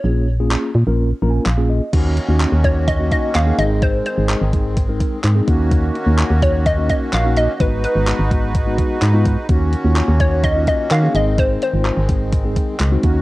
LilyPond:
<<
  \new Staff \with { instrumentName = "Synth pluck" } { \time 4/4 \key ees \minor \tempo 4 = 127 des''2.~ des''8 r8 | r4. des''8 ees''8 ees''8 f''8 ees''8 | c''8 c''2 r4. | r4. des''8 ees''8 ees''8 f''8 ees''8 |
ces''8 ces''2 r4. | r4. des''8 ees''8 ees''8 f''8 ees''8 | c''8 c''2 r4. | }
  \new Staff \with { instrumentName = "Tine electric piano" } { \time 4/4 \key ees \minor << { r2 \tuplet 3/2 { r8. bes''16 aes''8 } f''8 ees''8 | r1 | r1 | r1 |
r1 | r1 | r1 | } \\ { <bes des' f' aes'>8 r16 <bes des' f' aes'>8. r16 <bes des' f' bes'>8 r16 <bes des' f' bes'>8 r16 <bes des' f' aes'>8 r16 | <bes des' ees' ges'>8 r16 <bes des' ees' ges'>8 r16 <bes des' ees' ges'>8 r16 <bes des' ees' ges'>8. r16 <bes des' ees' aes'>16 <aes c' ees' aes'>8~ | <aes c' ees' aes'>8 r16 <aes c' ees' aes'>8 r16 <aes c' ees' aes'>8 r16 <aes c' ees' bes'>8. r16 <aes c' ees' aes'>16 <bes des' ees' ges'>8~ | <bes des' ees' ges'>8 r16 <bes des' ees' ges'>8 r16 <bes des' ees' ges'>8 r16 <bes des' ees' ges'>8. r16 <bes des' ees' ges'>8 r16 |
<aes ces' ees' ges'>8 r16 <aes ces' ees' ges'>8 r16 <aes ces' ees' ges'>8 r16 <aes ces' ees' ges'>8. r16 <aes ces' ees' f'>8 r16 | <bes des' ees' ges'>8 r16 <bes des' ees' f'>8 r16 <bes des' ees' ges'>8 r16 <bes des' ees' f'>8. r16 <bes des' ees' aes'>16 <aes c' ees' aes'>8~ | <aes c' ees' aes'>8 r16 <aes c' ees' f'>8 r16 <aes c' ees' aes'>8 r16 <aes c' ees' aes'>8. r16 <aes c' ees' ges'>16 <bes des' ees' ges'>8 | } >> }
  \new Staff \with { instrumentName = "Accordion" } { \time 4/4 \key ees \minor r1 | <bes des' ges'>2.~ <bes des' ges'>8 <aes c'>8~ | <aes c'>2.~ <aes c'>8 <bes des' ges'>8~ | <bes des' ges'>1 |
<ees' ces''>1 | <bes des' ges'>2.~ <bes des' ges'>8 <aes c'>8~ | <aes c'>2.~ <aes c'>8 <bes des' ges'>8 | }
  \new Staff \with { instrumentName = "Accordion" } { \clef bass \time 4/4 \key ees \minor r1 | ees1~ | ees1~ | ees1 |
aes1 | ees1~ | ees1 | }
  \new Staff \with { instrumentName = "FM bass" } { \clef bass \time 4/4 \key ees \minor bes,,4. bes,16 bes,,8. bes,,8 bes,,4 | ees,8. ees,8 ees,4.~ ees,16 ees,8 aes,,8~ | aes,,8. aes,,8 aes,,4.~ aes,,16 aes,8 ees,8~ | ees,8. ees,8 ees,4.~ ees,16 bes,,4 |
aes,,8. aes,,8 aes,,4.~ aes,,16 aes,4 | ees,8. ees,8 ees,4.~ ees,16 ees8 aes,,8~ | aes,,8. aes,,8 aes,,4.~ aes,,16 des,8 ees,8 | }
  \new DrumStaff \with { instrumentName = "Drums" } \drummode { \time 4/4 r4 hc4 r4 hc4 | <cymc hh bd>8 hh8 <hc hh>8 <hh bd>8 <hh bd>8 <hh bd>8 <hc hh>8 hh8 | <hh bd>8 hh8 <hc hh>8 <hh bd>8 <hh bd>8 <hh bd>8 <hc hh>8 <hh bd>8 | <hh bd>8 hh8 <hc hh>8 <hh bd>8 <hh bd>8 <hh bd>8 <hc hh>8 hh8 |
<hh bd>8 hh8 <hc hh>8 <hh bd>8 <hh bd>8 <hh bd>8 <hc hh>8 <hh bd>8 | <hh bd>8 hh8 <hc hh>8 <hh bd>8 <hh bd>8 <hh bd>8 <hc hh>8 hh8 | <hh bd>8 hh8 <hc hh>8 <hh bd>8 <hh bd>8 <hh bd>8 <hc hh>8 <hh bd>8 | }
>>